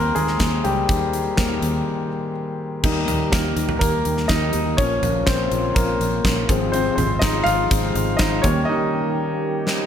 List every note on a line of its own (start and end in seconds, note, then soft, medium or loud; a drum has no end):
0.00 0.11 D#2 medium
0.00 1.37 D#3 soft
0.00 0.65 G3 soft
0.00 1.39 A#3 medium
0.00 2.86 C4 medium
0.00 0.16 A#4 medium
0.00 2.85 C5 medium
0.15 0.36 D#2 medium
0.15 0.61 G#3 medium
0.15 0.65 G#4 medium
0.15 closed hi-hat medium
0.27 snare soft
0.40 0.60 D#2 medium
0.40 kick medium
0.40 snare loud
0.40 closed hi-hat medium
0.64 0.84 C#2 medium
0.64 1.36 G3 medium
0.64 2.31 G4 medium
0.64 closed hi-hat medium
0.89 1.29 D#2 medium
0.89 kick medium
0.89 closed hi-hat medium
1.13 closed hi-hat medium
1.37 1.58 D#2 medium
1.37 2.07 D#3 soft
1.37 2.07 G3 soft
1.37 2.08 A#3 soft
1.37 kick medium
1.37 snare medium
1.37 closed hi-hat medium
1.62 1.82 D#2 medium
1.62 closed hi-hat medium
2.83 3.04 D#2 medium
2.83 4.77 D#3 medium
2.83 4.75 G3 soft
2.83 6.46 A#3 medium
2.83 3.32 A#3 soft
2.83 4.28 D#4 medium
2.83 4.76 G4 medium
2.83 kick loud
2.83 crash medium
3.08 3.28 D#2 medium
3.08 closed hi-hat medium
3.08 floor tom medium
3.32 3.52 D#2 medium
3.32 3.78 A#3 medium
3.32 3.78 A#4 medium
3.32 kick loud
3.32 snare medium
3.32 closed hi-hat medium
3.56 3.77 D#2 medium
3.56 closed hi-hat medium
3.69 floor tom medium
3.79 4.01 D#2 medium
3.79 4.27 A#3 medium
3.79 4.30 A#4 medium
3.79 kick loud
3.79 closed hi-hat medium
4.05 4.26 D#2 medium
4.05 closed hi-hat medium
4.17 snare soft
4.28 4.50 D#2 medium
4.28 4.75 D#4 medium
4.28 4.79 D#5 medium
4.28 kick loud
4.28 snare loud
4.28 closed hi-hat medium
4.53 4.74 D#2 medium
4.53 closed hi-hat medium
4.77 4.98 A#1 medium
4.77 6.47 C#3 medium
4.77 6.45 F3 soft
4.77 5.74 A#3 soft
4.77 5.24 C#4 medium
4.77 6.47 F4 medium
4.77 5.28 C#5 medium
4.77 kick loud
4.77 closed hi-hat medium
5.03 5.23 A#1 medium
5.03 closed hi-hat medium
5.03 floor tom medium
5.26 5.47 A#1 medium
5.26 5.73 C4 medium
5.26 5.72 C5 medium
5.26 kick loud
5.26 snare medium
5.26 closed hi-hat medium
5.52 5.72 A#1 medium
5.52 closed hi-hat medium
5.75 5.96 A#1 medium
5.75 6.45 A#3 medium
5.75 6.45 A#4 medium
5.75 kick loud
5.75 closed hi-hat medium
6.00 6.20 A#1 medium
6.00 closed hi-hat medium
6.25 6.45 A#1 medium
6.25 kick medium
6.25 snare loud
6.25 closed hi-hat medium
6.47 6.89 G#1 medium
6.47 8.41 C3 medium
6.47 7.69 F3 medium
6.47 8.42 G#3 medium
6.47 7.69 G#3 soft
6.47 6.73 C4 medium
6.47 8.42 F4 medium
6.47 kick loud
6.47 closed hi-hat medium
6.72 6.97 C4 medium
6.72 6.94 C5 medium
6.72 closed hi-hat medium
6.95 7.18 G#1 medium
6.95 7.04 C4 medium
6.95 7.01 C5 medium
6.95 closed hi-hat medium
6.95 floor tom medium
7.19 7.42 G#1 medium
7.19 7.45 D#4 medium
7.19 7.46 D#5 medium
7.19 kick loud
7.19 snare medium
7.19 closed hi-hat medium
7.44 7.66 G#1 medium
7.44 8.16 F4 medium
7.44 8.21 F5 loud
7.44 closed hi-hat medium
7.70 7.91 G#1 loud
7.70 7.93 F3 soft
7.70 7.93 G#3 soft
7.70 7.93 C4 soft
7.70 kick loud
7.70 closed hi-hat medium
7.95 8.15 G#1 loud
7.95 closed hi-hat medium
8.17 8.40 G#1 loud
8.17 8.43 D#4 medium
8.17 8.43 D#5 medium
8.17 kick loud
8.17 snare loud
8.17 closed hi-hat medium
8.42 8.64 D#2 medium
8.42 9.86 D#3 medium
8.42 9.86 G3 soft
8.42 9.86 A#3 medium
8.42 8.68 C#4 medium
8.42 9.86 G4 medium
8.42 8.68 C#5 medium
8.42 kick loud
8.42 closed hi-hat medium
8.65 9.62 D#4 medium
8.65 9.60 D#5 medium
9.67 snare medium